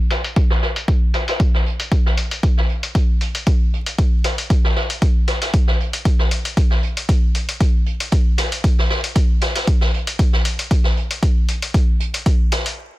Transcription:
0.11 snare medium
0.11 closed hi-hat medium
0.24 closed hi-hat soft
0.36 kick loud
0.36 closed hi-hat medium
0.50 snare medium
0.62 snare soft
0.62 closed hi-hat medium
0.76 closed hi-hat soft
0.88 kick loud
0.88 closed hi-hat medium
1.14 snare soft
1.14 closed hi-hat soft
1.14 closed hi-hat medium
1.28 snare soft
1.28 closed hi-hat soft
1.40 kick loud
1.40 closed hi-hat medium
1.54 snare soft
1.66 closed hi-hat medium
1.79 closed hi-hat soft
1.91 kick loud
1.91 closed hi-hat medium
2.06 snare soft
2.17 closed hi-hat medium
2.31 closed hi-hat soft
2.43 kick loud
2.43 closed hi-hat medium
2.57 snare soft
2.69 closed hi-hat medium
2.83 closed hi-hat soft
2.95 kick loud
2.95 closed hi-hat medium
3.21 closed hi-hat soft
3.21 closed hi-hat medium
3.35 closed hi-hat soft
3.47 kick loud
3.47 closed hi-hat medium
3.73 closed hi-hat medium
3.86 closed hi-hat soft
3.98 kick loud
3.98 closed hi-hat medium
4.24 snare medium
4.24 closed hi-hat medium
4.38 closed hi-hat soft
4.50 kick loud
4.50 closed hi-hat medium
4.64 snare medium
4.76 snare medium
4.76 closed hi-hat medium
4.90 closed hi-hat soft
5.02 kick loud
5.02 closed hi-hat medium
5.28 snare soft
5.28 closed hi-hat soft
5.28 closed hi-hat medium
5.42 snare soft
5.42 closed hi-hat soft
5.54 kick loud
5.54 closed hi-hat medium
5.67 snare soft
5.80 closed hi-hat medium
5.93 closed hi-hat soft
6.05 kick loud
6.05 closed hi-hat medium
6.19 snare soft
6.31 closed hi-hat medium
6.45 closed hi-hat soft
6.57 kick loud
6.57 closed hi-hat medium
6.70 snare soft
6.83 closed hi-hat medium
6.97 closed hi-hat soft
7.09 kick loud
7.09 closed hi-hat medium
7.35 closed hi-hat soft
7.35 closed hi-hat medium
7.49 closed hi-hat soft
7.61 kick loud
7.61 closed hi-hat medium
7.86 closed hi-hat medium
8.00 closed hi-hat soft
8.00 closed hi-hat medium
8.12 kick loud
8.12 closed hi-hat medium
8.38 snare medium
8.38 closed hi-hat medium
8.52 closed hi-hat soft
8.64 kick loud
8.64 closed hi-hat medium
8.79 snare soft
8.90 snare medium
8.90 closed hi-hat medium
9.04 closed hi-hat soft
9.15 kick loud
9.15 closed hi-hat medium
9.41 snare soft
9.41 closed hi-hat medium
9.41 closed hi-hat soft
9.56 snare soft
9.56 closed hi-hat medium
9.67 kick loud
9.67 closed hi-hat medium
9.81 snare soft
9.94 closed hi-hat medium
10.07 closed hi-hat medium
10.07 closed hi-hat soft
10.19 kick loud
10.19 closed hi-hat medium
10.33 snare soft
10.45 closed hi-hat medium
10.59 closed hi-hat medium
10.71 kick loud
10.71 closed hi-hat medium
10.84 snare soft
10.97 closed hi-hat medium
11.11 closed hi-hat medium
11.22 kick loud
11.22 closed hi-hat medium
11.49 closed hi-hat soft
11.49 closed hi-hat medium
11.62 closed hi-hat medium
11.74 kick loud
11.74 closed hi-hat medium
12.00 closed hi-hat medium
12.13 closed hi-hat soft
12.13 closed hi-hat medium
12.26 kick loud
12.26 closed hi-hat medium
12.52 snare medium
12.52 closed hi-hat medium
12.66 closed hi-hat medium

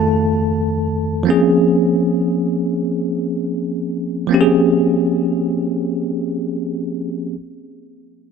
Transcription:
0.00 0.84 F2 medium
0.00 0.84 D#3 medium
0.00 0.85 A3 medium
0.00 0.85 A4 medium
0.00 0.84 A5 medium
1.23 4.24 F3 medium
1.23 4.25 A#3 medium
1.23 4.26 C4 medium
1.28 4.27 C#4 medium
1.28 4.28 G#4 medium
4.27 7.28 F3 medium
4.27 7.29 A#3 medium
4.27 7.30 C4 medium
4.32 7.31 C#4 medium
4.32 4.38 G4 medium
4.41 7.35 G#4 medium

